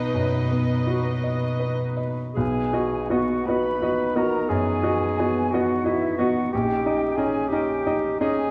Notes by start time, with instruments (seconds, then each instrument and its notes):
Already playing: cello section B2, grand piano B3 F#4 D#5, viola section D#4 B4, violin section B4 D#5
0.14 grand piano F#2
0.51 grand piano B3
0.87 grand piano F#4
1.24 grand piano D#5
1.60 grand piano B4
1.97 grand piano D#5
2.34 grand piano B1, french horn section B3 D#4, clarinet G#4, flute section G#5
2.73 grand piano F#4 D#5
3.10 grand piano B3 F#4 D#5, clarinet F#4, flute section F#5
3.47 french horn section B3 D#4, grand piano B3 F#4 D#5, clarinet B4, flute section B5
3.82 grand piano F#4 D#5
4.16 grand piano B3 F#4 D#5, clarinet A#4, flute section A#5
4.48 grand piano F#2, clarinet G#4, flute section G#5
4.83 grand piano F#4 D#5
5.19 grand piano B3 F#4 D#5
5.51 french horn section B3 D#4, grand piano B3 F#4 D#5, clarinet F#4, flute section F#5
5.84 clarinet E4, grand piano F#4 D#5, flute section E5
6.18 grand piano B3 F#4 D#5, clarinet F#4, flute section F#5
6.52 grand piano A#1, french horn section C#4 D#4, clarinet G4, flute section G5
6.86 grand piano D#4 D#5
7.17 grand piano C#4 D#4 D#5, clarinet G#4, flute section G#5
7.49 french horn section C#4 D#4, grand piano C#4 D#4, clarinet G4, flute section G5
7.53 grand piano D#5
7.87 grand piano D#4 D#5
8.20 grand piano C#4 D#4 D#5, clarinet G#4, flute section G#5